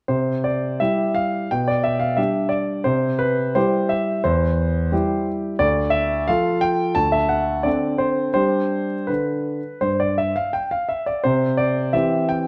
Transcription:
0.08 C3 C5
0.44 D5
0.80 G3 E4 G4 E5
1.14 F5
1.51 B2 G5
1.68 D5
1.84 E5
2.00 F5
2.17 G3 D4 G4 E5
2.49 D5
2.84 C3 C5
3.19 B4
3.55 G3 E4 G4 C5
3.89 E5
4.24 E2 C5
4.92 G3 E4 G4
5.59 D2 D5
5.90 E5
6.28 F3 F4 A4 F5
6.61 G5
6.95 D2 A5
7.12 E5
7.29 F#5
7.63 D3 C4 A4 D5
7.98 C5
8.34 G3 D4 G4 C5
9.07 D3 B4
9.81 G2 C5
10.00 D5
10.18 E5
10.36 F5
10.53 G5
10.71 F5
10.89 E5
11.06 D5
11.24 C3 C5
11.57 D5
11.93 E3 C4 G4 E5
12.29 G5

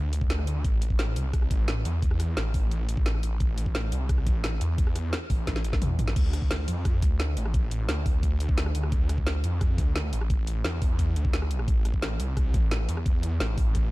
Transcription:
Already playing: D2
0.13 closed hi-hat
0.21 kick
0.30 snare, closed hi-hat
0.39 cross-stick
0.47 D2, closed hi-hat
0.64 A1, kick, closed hi-hat
0.82 closed hi-hat
0.90 kick
0.99 snare, closed hi-hat
1.16 C2, closed hi-hat
1.33 kick, cross-stick, closed hi-hat
1.42 cross-stick
1.51 A1, kick, closed hi-hat
1.68 snare, closed hi-hat
1.85 E2, closed hi-hat
2.02 kick, closed hi-hat
2.11 cross-stick
2.20 cross-stick, closed hi-hat
2.37 A1, snare, closed hi-hat
2.54 kick, open hi-hat
2.71 closed hi-hat
2.89 A1, closed hi-hat
2.97 kick
3.06 snare, closed hi-hat
3.15 cross-stick
3.23 A1, closed hi-hat
3.40 A1, kick, closed hi-hat
3.58 closed hi-hat
3.66 kick
3.75 snare, closed hi-hat
3.92 C2, closed hi-hat
4.09 kick, cross-stick, closed hi-hat
4.18 cross-stick
4.27 A1, kick, closed hi-hat
4.44 snare, closed hi-hat
4.61 E2, closed hi-hat
4.78 kick, closed hi-hat
4.87 cross-stick
4.96 cross-stick, closed hi-hat
5.13 snare, closed hi-hat
5.30 A1, kick, open hi-hat
5.47 kick, snare, closed hi-hat
5.56 snare
5.64 closed hi-hat
5.73 kick, snare
5.82 E2, closed hi-hat, mid tom
5.99 A1, closed hi-hat, mid tom
6.08 snare
6.16 D2, kick, closed hi-hat, crash
6.33 cross-stick, closed hi-hat
6.42 kick
6.51 snare, closed hi-hat
6.68 F2, closed hi-hat
6.85 kick, cross-stick, closed hi-hat
7.02 D2, kick, closed hi-hat
7.20 snare, closed hi-hat
7.37 A1, closed hi-hat
7.46 cross-stick
7.54 kick, closed hi-hat
7.71 closed hi-hat
7.89 D2, snare, closed hi-hat
8.06 kick, open hi-hat
8.23 kick, closed hi-hat
8.40 D2, closed hi-hat
8.49 kick
8.58 snare, closed hi-hat
8.66 cross-stick
8.75 D2, closed hi-hat
8.83 cross-stick
8.92 D2, kick, closed hi-hat
9.09 cross-stick, closed hi-hat
9.18 kick
9.27 snare, closed hi-hat
9.44 F2, closed hi-hat
9.61 kick, cross-stick, closed hi-hat
9.78 D2, kick, closed hi-hat
9.96 snare, closed hi-hat
10.13 A1, closed hi-hat
10.21 cross-stick
10.30 kick, closed hi-hat
10.47 closed hi-hat
10.64 E2, snare, closed hi-hat
10.82 kick, open hi-hat
10.99 kick, closed hi-hat
11.16 D2, closed hi-hat
11.25 kick
11.33 snare, closed hi-hat
11.42 cross-stick
11.51 closed hi-hat
11.59 cross-stick
11.68 A1, kick, closed hi-hat
11.85 cross-stick, closed hi-hat
11.94 kick
12.02 snare, closed hi-hat
12.20 C2, closed hi-hat
12.37 kick, cross-stick, closed hi-hat
12.54 A1, kick, closed hi-hat
12.71 snare, closed hi-hat
12.89 E2, closed hi-hat
12.97 cross-stick
13.06 kick, closed hi-hat
13.23 closed hi-hat
13.40 A1, snare, closed hi-hat
13.58 kick, open hi-hat
13.75 kick, closed hi-hat

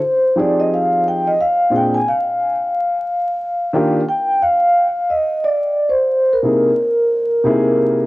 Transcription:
Already playing: C5
0.35 F3 C4 D#4 G4 G#4 D5
0.59 D#5
0.74 F5
1.08 G5
1.27 D#5
1.41 F5
1.70 A#2 C4 D4 F4 G#4
1.76 G5
1.94 G#5
2.08 F5
3.73 D#3 A#3 D4 F4 G4
4.09 G5
4.42 F5
5.10 D#5
5.44 D5
5.89 C5
6.33 A#4
6.42 C3 A#3 D#4 E4 G#4
7.44 C3 A#3 D#4 E4 G#4

